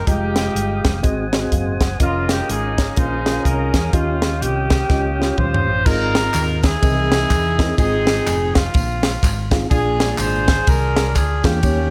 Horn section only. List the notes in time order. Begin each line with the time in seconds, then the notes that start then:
0.08 C4 D#4 G4
2.00 G#3 A#3 F4
2.32 G4
2.49 C#4 D#4 G#4
2.96 D#4 G#4 C5
3.45 C#4 D#4 A#4
3.94 A#3 C#4 F4
4.41 A#3 C#4 G4
5.38 F4 G4 C5
5.85 D#4 F4 A#4
6.63 D#4 E4 G#4
7.78 C4 D#4 G#4
8.54 C4 F4
9.70 D4 F4 G#4
10.19 F4 G#4 C5
10.68 D4 F4 A#4
11.15 G#4
11.43 A#3 C#4 G4